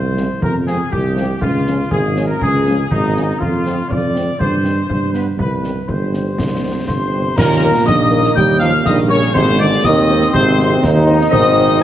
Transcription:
Already playing: tuba C2, trumpet section C5
0.16 french horn section F3 G#3 C4, snare
0.41 tuba F2, trumpet section A#4, concert bass drum
0.66 french horn section F3 G#3 C4, trumpet section G#4, snare
0.91 tuba C2, trumpet section G4, concert bass drum
1.15 french horn section F3 G#3 C4, snare
1.41 tuba C#2, trumpet section F4, concert bass drum
1.67 french horn section F3 G#3 C#4, snare
1.91 tuba G#1, trumpet section G#4, concert bass drum
2.16 french horn section F3 G#3 C#4, snare
2.26 trumpet section A#4
2.41 tuba C#2, trumpet section G#4, concert bass drum
2.66 french horn section F3 G#3 C#4, snare
2.91 tuba G#1, trumpet section D#4, concert bass drum
3.15 french horn section F3 G#3 C#4, snare
3.40 tuba F2, trumpet section F4, concert bass drum
3.66 french horn section D3 G#3 C4, snare
3.90 tuba F2, trumpet section D5, concert bass drum
4.14 french horn section D3 G#3 C4, snare
4.40 tuba G2, trumpet section C5, concert bass drum
4.64 french horn section D#3 G3 C4, snare
4.90 tuba G2, concert bass drum
5.14 french horn section F3 G3 B3, trumpet section B4, snare
5.37 tuba C2, trumpet section B4, concert bass drum
5.63 french horn section D#3 G3 C4, snare
5.88 tuba G1, euphonium G3, trumpet section C5, concert bass drum
6.13 french horn section D#3 G3 C4, snare
6.37 tuba C2, euphonium D4, concert bass drum, snare
6.63 french horn section D#3 G3 C4
6.86 tuba G1, euphonium C3, trumpet section C5, piccolo C6, concert bass drum, snare
7.12 french horn section D#3 G3 C4
7.36 tuba D#2, euphonium A#2, trombone section A#3, trumpet section A#4, piccolo A#5, concert bass drum, snare, crash
7.61 french horn section G3 C#4 A#4
7.85 tuba A#1, euphonium D#3, trumpet section D#5, piccolo D#6, concert bass drum, snare
8.11 french horn section G3 C#4 A#4
8.24 snare
8.35 tuba D#2, euphonium G3, trumpet section G5, piccolo G6, concert bass drum
8.60 euphonium F3, french horn section G3 C#4 A#4, trumpet section F5, piccolo F6, snare
8.85 tuba A#1, euphonium D#3, trombone section G3, trumpet section D#5, piccolo D#6, concert bass drum, snare
9.09 euphonium C#3, french horn section G3 C#4 A#4, trumpet section C#5, piccolo C#6
9.23 snare
9.33 tuba G#1, euphonium C3, trombone section G#3, trumpet section C5, piccolo C6, concert bass drum, snare, crash
9.58 euphonium D3, french horn section G#3 C4 C5, trumpet section D5, piccolo D6
9.84 tuba D#2, euphonium D#3, trombone section C4, trumpet section D#5, piccolo D#6, concert bass drum, snare
10.08 french horn section G#3 C4 C5
10.21 snare
10.33 tuba G#1, euphonium C3, trumpet section C5, piccolo C6, concert bass drum
10.57 french horn section G#3 C4 C5, snare
10.82 tuba D#2, trombone section D#4, concert bass drum, snare
11.07 french horn section G#3 C4 C5
11.21 snare
11.31 tuba G#1, euphonium D#3, french horn section G#3 C4 C5, trumpet section D#5, piccolo D#6, concert bass drum, snare, crash

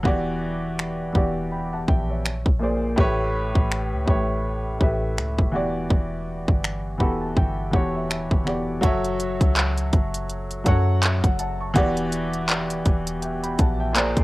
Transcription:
0.03 808-style bass E1, grand piano E3 B3 F#4 G4, kick
0.07 grand piano D5
0.79 finger snap
1.13 808-style bass E1, grand piano E3 B3 F#4 G4, kick
1.17 grand piano D5
1.52 grand piano G5 B5
1.73 grand piano F#5 A5
1.88 808-style bass A#1, grand piano E5 G5, kick
2.09 grand piano C#5 E5
2.26 finger snap
2.46 808-style bass A#1, kick
2.59 grand piano A#2 A#3 G#4 C5
2.64 grand piano D5
2.96 808-style bass A1, grand piano A2 A3 G4 B4, kick
3.00 grand piano C#5
3.56 808-style bass A1, kick
3.72 finger snap
3.92 808-style bass C#2
4.06 808-style bass A1, grand piano A2 A3 G4 B4, kick
4.10 grand piano C#5
4.79 808-style bass A1, grand piano A2 A3 G4 B4, kick
4.83 grand piano E5
5.17 808-style bass C#2, finger snap
5.38 808-style bass E1, kick
5.52 grand piano E3 B3 F#4 G4
5.56 grand piano D5
5.90 808-style bass E1, kick
6.48 808-style bass G1, kick
6.64 finger snap
6.98 808-style bass E1, grand piano E3 B3 F#4 G4 B5, kick
7.02 grand piano A4
7.21 grand piano A5
7.37 808-style bass G1, grand piano G5, kick
7.71 808-style bass E1, grand piano E3 B3 F#4 G4 F#5, kick
7.75 grand piano C#5
7.94 grand piano E5
8.10 grand piano E5, finger snap
8.31 808-style bass E1, kick
8.44 grand piano E3 B3 F#4 G4 D5, finger snap
8.48 grand piano D5
8.81 808-style bass F#1, grand piano F#3 F#4 A4 C#5, kick, closed hi-hat
8.85 grand piano E5
9.04 closed hi-hat
9.20 closed hi-hat
9.41 808-style bass C#2, kick, closed hi-hat
9.56 clap, closed hi-hat
9.77 closed hi-hat
9.93 808-style bass F#1, kick, closed hi-hat
10.14 closed hi-hat
10.29 closed hi-hat
10.51 closed hi-hat
10.64 808-style bass F#2, grand piano F#3 F#4 A4 C#5, kick, closed hi-hat
10.68 grand piano F#5
11.03 grand piano C#5 E5, clap, closed hi-hat
11.24 808-style bass F#1, grand piano F#5, kick, closed hi-hat
11.39 grand piano F#5 A5, closed hi-hat
11.60 grand piano A5 C#6
11.74 808-style bass E1, grand piano E3 B3 F#4 G4, kick, closed hi-hat
11.78 grand piano D5
11.97 closed hi-hat
12.12 closed hi-hat
12.34 closed hi-hat
12.49 clap, closed hi-hat
12.70 closed hi-hat
12.86 808-style bass E1, kick, closed hi-hat
13.07 closed hi-hat
13.22 grand piano E5 G5, closed hi-hat
13.43 grand piano G5 B5, closed hi-hat
13.58 808-style bass A#1, grand piano F#5 A5, kick, closed hi-hat
13.80 grand piano E5 G5
13.93 grand piano A#2 A#3 G#4 C5 A#5, clap, closed hi-hat
13.97 grand piano D5
14.17 808-style bass A#1, kick, closed hi-hat

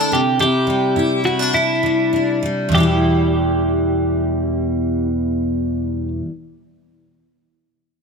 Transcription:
Already playing: steel-string acoustic guitar D3 A3 D4 E4, clean electric guitar A4
0.12 steel-string acoustic guitar C3, clean electric guitar G4
0.39 steel-string acoustic guitar C3 E4, clean electric guitar G4
0.67 steel-string acoustic guitar G3
0.96 steel-string acoustic guitar E4
1.24 steel-string acoustic guitar C4, clean electric guitar F#4
1.39 steel-string acoustic guitar D4
1.53 steel-string acoustic guitar E4, clean electric guitar E4
1.83 steel-string acoustic guitar G3
2.13 steel-string acoustic guitar D4
2.43 steel-string acoustic guitar G3
2.69 steel-string acoustic guitar E2 B2
2.75 steel-string acoustic guitar E3 G3, clean electric guitar G4
2.80 steel-string acoustic guitar E4

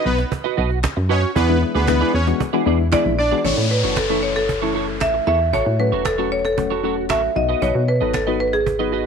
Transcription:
0.05 fm bass B1, supersaw synth B3 B4, muted clean electric guitar stroke
0.18 muted clean electric guitar stroke, cajon slap
0.31 muted clean electric guitar stroke, cajon bass
0.44 clean electric guitar F#4 B4 D#5, cajon slap
0.57 fm bass B1, clean electric guitar F#4 B4 D#5, cajon slap
0.70 muted clean electric guitar stroke, cajon slap
0.83 muted clean electric guitar stroke, cajon bass, cajon slap, clap
0.97 fm bass F#2, muted clean electric guitar stroke, cajon slap
1.09 supersaw synth C#4 C#5, clean electric guitar F#4 B4 D#5
1.23 muted clean electric guitar stroke, cajon slap
1.36 fm bass E2, supersaw synth B3 B4, clean electric guitar E4 G#4 D5, cajon bass
1.49 synth keys E3 G#3 B3 D4 E4, muted clean electric guitar stroke
1.62 muted clean electric guitar stroke, cajon slap
1.75 fm bass D2, supersaw synth B3 B4, clean electric guitar E4 G#4 D5, cajon slap
1.88 synth keys E3 G#3 B3 D4 E4, supersaw synth B3 B4, muted clean electric guitar stroke, cajon bass, cajon slap, clap
2.01 clean electric guitar E4 G#4 D5
2.14 fm bass E2, supersaw synth C#4 C#5, muted clean electric guitar stroke
2.27 synth keys E3 G#3 B3 D4 F#4, muted clean electric guitar stroke, cajon slap
2.40 muted clean electric guitar stroke, cajon bass
2.53 synth keys E3 G#3 B3 D4 F#4, clean electric guitar E4 G#4 D5, cajon slap
2.66 fm bass E2, synth keys E3 G#3 B3 D4 E4, clean electric guitar E4 G#4 D5, cajon slap
2.79 muted clean electric guitar stroke, cajon slap
2.92 synth keys E3 G#3 B3 D4 E4, clean electric guitar E4 G#4 D5, marimba D5, cajon bass, cajon slap, clap
3.05 fm bass A#1, muted clean electric guitar stroke, cajon slap
3.18 supersaw synth D4 D5, marimba D5, muted clean electric guitar stroke
3.31 synth keys E3 G#3 B3 D4 F#4, clean electric guitar E4 G#4 D5, cajon slap
3.38 marimba D5
3.44 fm bass A1, synth keys E3 A3 C#4 E4, clean electric guitar E4 A4 C#5, marimba C#5, cajon bass, downlifter
3.57 fm bass A2, muted clean electric guitar stroke
3.70 marimba B4, muted clean electric guitar stroke
3.83 fm bass F#1, synth keys E3 A3 C#4 F#4, clean electric guitar E4 A4 C#5
3.97 marimba A4, muted clean electric guitar stroke, cajon bass, cajon slap, clap
4.09 synth keys E3 A3 C#4 E4, clean electric guitar E4 A4 C#5
4.23 marimba C#5, muted clean electric guitar stroke
4.36 marimba A4, muted clean electric guitar stroke, cajon slap
4.49 muted clean electric guitar stroke, cajon bass
4.62 synth keys E3 A3 C#4 E4, clean electric guitar E4 A4 C#5
4.75 clean electric guitar E4 A4 C#5
4.88 muted clean electric guitar stroke
5.01 fm bass A1, marimba E5, muted clean electric guitar stroke, cajon bass, cajon slap, clap
5.14 muted clean electric guitar stroke
5.27 fm bass E2, clean electric guitar E4 A4 C#5, marimba E5
5.40 muted clean electric guitar stroke
5.53 fm bass A1, clean electric guitar F#4 A4 C#5, marimba C#5, cajon bass
5.66 fm bass A2, muted clean electric guitar stroke
5.79 synth keys F#3 A3 C#4 F#4, marimba B4, muted clean electric guitar stroke
5.92 fm bass E1, clean electric guitar F#4 A4 C#5
6.05 marimba A4, muted clean electric guitar stroke, cajon bass, cajon slap, clap
6.18 synth keys F#3 A3 C#4 F#4, clean electric guitar F#4 A4 C#5
6.31 marimba C#5, muted clean electric guitar stroke
6.45 marimba A4, muted clean electric guitar stroke, cajon slap
6.57 synth keys F#3 A3 C#4 F#4, muted clean electric guitar stroke, cajon bass
6.70 clean electric guitar F#4 A4 C#5
6.83 synth keys F#3 A3 C#4 F#4, clean electric guitar F#4 A4 C#5
6.96 muted clean electric guitar stroke
7.09 fm bass A1, clean electric guitar F#4 A4 C#5, marimba E5, cajon bass, cajon slap, clap
7.23 muted clean electric guitar stroke
7.36 fm bass B1, synth keys F#3 B3 D#4 F#4, marimba D#5, muted clean electric guitar stroke
7.49 clean electric guitar F#4 B4 D#5
7.62 fm bass B1, clean electric guitar F#4 B4 D#5, marimba C#5, cajon bass
7.75 fm bass B2, muted clean electric guitar stroke
7.88 marimba B4, muted clean electric guitar stroke
8.01 fm bass G#1, synth keys F#3 B3 D#4 A4, clean electric guitar F#4 B4 D#5
8.14 marimba A4, muted clean electric guitar stroke, cajon bass, cajon slap, clap
8.27 synth keys F#3 B3 D#4 F#4, clean electric guitar F#4 B4 D#5
8.40 marimba B4, muted clean electric guitar stroke
8.53 marimba G#4, muted clean electric guitar stroke, cajon slap
8.66 muted clean electric guitar stroke, cajon bass
8.79 synth keys F#3 B3 D#4 F#4, clean electric guitar F#4 B4 D#5
8.92 clean electric guitar F#4 B4 D#5

